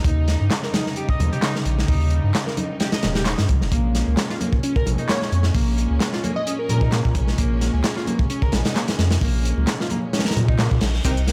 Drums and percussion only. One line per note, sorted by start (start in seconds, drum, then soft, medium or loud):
0.04 kick loud
0.04 closed hi-hat medium
0.28 snare medium
0.28 closed hi-hat medium
0.51 snare loud
0.51 clap loud
0.51 closed hi-hat medium
0.63 snare soft
0.74 snare loud
0.74 closed hi-hat medium
0.74 high conga loud
0.86 snare soft
0.96 closed hi-hat medium
1.09 kick medium
1.20 closed hi-hat medium
1.20 high conga medium
1.20 low conga medium
1.33 closed hi-hat soft
1.42 snare loud
1.42 clap loud
1.42 closed hi-hat medium
1.55 snare medium
1.65 closed hi-hat medium
1.79 snare medium
1.88 kick loud
1.88 open hi-hat medium
2.11 closed hi-hat medium
2.34 snare loud
2.34 clap loud
2.34 closed hi-hat medium
2.47 snare medium
2.57 closed hi-hat medium
2.57 high conga medium
2.80 snare medium
2.80 closed hi-hat medium
2.92 snare loud
2.92 closed hi-hat medium
3.03 snare loud
3.03 closed hi-hat medium
3.03 high conga loud
3.03 low conga medium
3.15 snare medium
3.15 closed hi-hat medium
3.25 snare loud
3.25 clap loud
3.25 closed hi-hat medium
3.38 snare loud
3.38 closed hi-hat medium
3.49 kick medium
3.49 closed hi-hat medium
3.49 high conga medium
3.61 snare soft
3.72 kick loud
3.72 closed hi-hat medium
3.95 snare soft
3.95 closed hi-hat medium
4.17 snare loud
4.17 clap loud
4.17 closed hi-hat medium
4.30 snare soft
4.41 closed hi-hat medium
4.41 high conga medium
4.53 kick medium
4.63 closed hi-hat medium
4.76 kick medium
4.86 closed hi-hat medium
4.86 high conga medium
4.86 low conga medium
4.98 closed hi-hat soft
5.09 snare loud
5.09 clap loud
5.09 closed hi-hat medium
5.22 snare medium
5.32 closed hi-hat medium
5.43 snare medium
5.55 kick medium
5.55 open hi-hat medium
5.78 closed hi-hat medium
6.00 snare loud
6.00 clap loud
6.00 closed hi-hat medium
6.13 snare medium
6.24 closed hi-hat medium
6.24 high conga medium
6.47 closed hi-hat medium
6.69 closed hi-hat medium
6.69 high conga medium
6.69 low conga medium
6.81 kick medium
6.92 snare loud
6.92 clap loud
6.92 closed hi-hat medium
7.05 kick medium
7.15 kick loud
7.15 closed hi-hat medium
7.28 snare soft
7.38 kick loud
7.38 closed hi-hat medium
7.61 snare soft
7.61 closed hi-hat medium
7.84 snare loud
7.84 clap loud
7.84 closed hi-hat medium
7.96 snare soft
8.07 closed hi-hat medium
8.07 high conga medium
8.19 kick medium
8.30 closed hi-hat medium
8.42 kick medium
8.52 snare loud
8.52 closed hi-hat medium
8.52 high conga medium
8.52 low conga medium
8.65 snare loud
8.65 closed hi-hat medium
8.76 snare loud
8.76 clap loud
8.76 closed hi-hat medium
8.88 snare loud
8.88 closed hi-hat medium
8.99 snare loud
8.99 closed hi-hat medium
9.11 snare loud
9.11 closed hi-hat medium
9.21 kick loud
9.21 open hi-hat medium
9.45 closed hi-hat medium
9.58 high conga medium
9.67 snare loud
9.67 clap loud
9.67 closed hi-hat medium
9.80 snare medium
9.90 closed hi-hat medium
9.90 high conga medium
10.13 snare medium
10.13 closed hi-hat medium
10.19 snare medium
10.19 closed hi-hat medium
10.25 snare medium
10.25 closed hi-hat medium
10.31 snare medium
10.31 closed hi-hat medium
10.36 closed hi-hat medium
10.36 high conga medium
10.36 low conga medium
10.48 kick loud
10.59 snare loud
10.59 clap loud
10.59 closed hi-hat medium
10.71 kick medium
10.81 snare loud
10.81 closed hi-hat medium
10.93 snare soft
11.05 kick loud
11.05 closed hi-hat medium
11.05 crash medium
11.05 shaker medium
11.17 shaker soft
11.27 snare soft
11.27 closed hi-hat medium